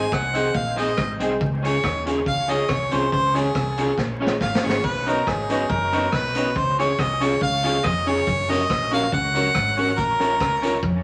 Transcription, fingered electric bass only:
0.12 0.48 C2 medium
0.55 0.91 A#1 medium
0.98 1.21 G#1 medium
1.21 1.38 C2 medium
1.41 1.77 C#2 loud
1.84 2.27 D#2 medium
2.27 2.63 C#2 medium
2.70 2.89 C2 medium
2.92 3.10 C2 medium
3.13 3.49 C#2 loud
3.55 3.92 C2 medium
3.98 4.35 A#1 loud
4.41 4.60 G#1 medium
4.64 4.81 G#1 medium
4.84 5.21 B1 loud
5.27 5.64 G#1 medium
5.70 6.06 F#1 medium
6.13 6.56 B1 medium
6.56 6.92 C#2 loud
6.99 7.35 C2 medium
7.41 7.78 C#2 loud
7.84 8.21 F1 medium
8.27 8.63 F#1 loud
8.70 9.06 A#1 medium
9.13 9.49 C#2 loud
9.55 9.98 G#1 loud
9.98 10.41 A#1 loud
10.41 10.83 C#2 medium
10.83 11.03 F2 medium

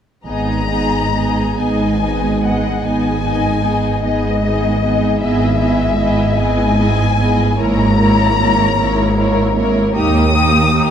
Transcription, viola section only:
0.27 0.70 B3 soft
0.27 0.70 D#4 soft
0.71 1.14 B3 soft
0.71 1.14 D#4 soft
1.15 1.58 B3 soft
1.15 1.58 D#4 soft
1.59 2.01 B3 soft
1.59 2.01 D#4 soft
2.03 2.43 B3 soft
2.03 2.43 D#4 soft
2.44 2.82 B3 soft
2.44 2.83 D#4 soft
2.83 3.22 B3 soft
2.83 3.22 D#4 soft
3.23 3.62 B3 soft
3.23 3.62 D#4 soft
3.64 4.03 B3 soft
3.64 4.03 D#4 soft
4.04 4.43 B3 soft
4.04 4.42 D#4 soft
4.43 4.82 B3 soft
4.43 4.82 D#4 soft
4.84 5.22 B3 soft
4.84 5.22 D#4 soft
5.23 5.59 B3 soft
5.23 5.59 E4 soft
5.60 5.98 B3 soft
5.60 5.98 E4 soft
5.99 6.36 B3 soft
5.99 6.37 E4 soft
6.38 6.77 B3 soft
6.38 6.78 E4 soft
6.79 7.18 B3 soft
6.79 7.18 E4 soft
7.19 7.59 B3 soft
7.19 7.58 E4 soft
7.60 7.98 A#3 soft
7.60 7.98 E4 soft
7.99 8.38 A#3 soft
7.99 8.38 E4 soft
8.39 8.77 A#3 soft
8.39 8.77 E4 soft
8.78 9.16 A#3 soft
8.78 9.16 E4 soft
9.17 9.55 A#3 soft
9.17 9.54 E4 soft
9.55 9.93 A#3 soft
9.55 9.94 E4 soft
9.95 10.32 A#3 medium
9.95 10.33 D#4 medium
10.34 10.73 A#3 soft
10.34 10.73 D#4 soft
10.74 10.90 A#3 medium
10.74 10.90 D#4 soft

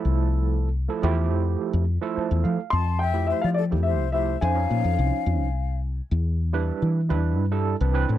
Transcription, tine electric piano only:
0.00 0.68 F3 medium
0.00 0.68 A3 medium
0.00 0.68 E4 medium
0.00 0.68 A4 loud
0.89 1.00 F3 medium
0.89 1.00 A3 medium
0.89 1.01 E4 medium
0.89 1.01 A4 medium
1.03 1.83 F3 medium
1.03 1.83 A3 medium
1.03 1.83 E4 medium
1.03 1.84 G4 loud
2.01 2.59 F3 medium
2.01 2.59 A3 medium
2.01 2.59 E4 medium
2.01 2.59 A4 medium
2.16 2.42 C5 medium
2.44 2.70 F5 medium
3.13 3.60 F3 medium
3.13 3.60 A3 medium
3.13 3.60 E4 medium
3.13 3.60 G4 medium
3.71 4.05 F3 medium
3.71 4.06 A3 medium
3.71 4.06 E4 medium
3.71 4.06 G4 medium
4.13 4.36 F3 medium
4.13 4.36 A3 medium
4.13 4.37 E4 medium
4.13 4.37 G4 medium
4.42 4.53 F3 medium
4.42 4.54 C#4 medium
4.42 4.54 D#4 medium
4.42 4.54 C5 medium
4.55 5.47 F3 medium
4.55 5.47 C#4 medium
4.55 5.48 D#4 medium
4.55 5.48 C#5 medium
6.53 6.99 G3 medium
6.53 6.99 D4 medium
6.53 6.99 E4 medium
6.53 7.00 B4 medium
7.09 7.44 G3 medium
7.09 7.44 D4 medium
7.09 7.44 E4 medium
7.09 7.44 B4 medium
7.51 7.75 G3 medium
7.51 7.75 D4 medium
7.51 7.75 E4 medium
7.51 7.75 A4 medium
7.80 7.92 E3 medium
7.80 7.92 C4 medium
7.80 7.92 D4 medium
7.80 7.92 B4 medium
7.93 8.18 E3 medium
7.93 8.18 C4 medium
7.93 8.18 D4 medium
7.93 8.18 B4 medium

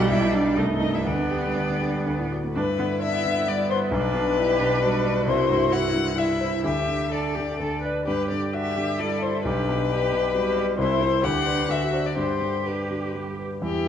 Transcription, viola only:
0.00 0.59 G3 medium
0.57 1.05 A3 medium
1.06 2.28 B3 medium
2.55 2.63 D4 medium
2.78 2.86 B3 medium
3.02 3.95 B3 soft
3.94 4.39 D4 medium
4.38 4.61 E4 medium
4.59 4.81 D4 medium
4.82 5.26 D4 medium
5.26 6.13 E4 medium
6.17 6.66 E4 soft
6.64 7.11 G4 soft
7.11 7.36 A4 soft
7.35 7.58 G4 soft
7.59 7.81 A4 medium
7.82 8.06 B4 soft
8.06 8.54 G4 soft
8.53 8.77 F#4 soft
8.76 9.00 G4 soft
8.99 9.44 A4 soft
9.44 9.89 G4 soft
9.89 10.33 G4 soft
10.34 10.78 G4 medium
10.80 11.25 E4 medium
11.23 11.71 G4 medium
11.70 12.16 F#4 medium
12.17 12.65 G4 soft
12.66 13.41 G4 soft
13.63 13.88 E4 medium

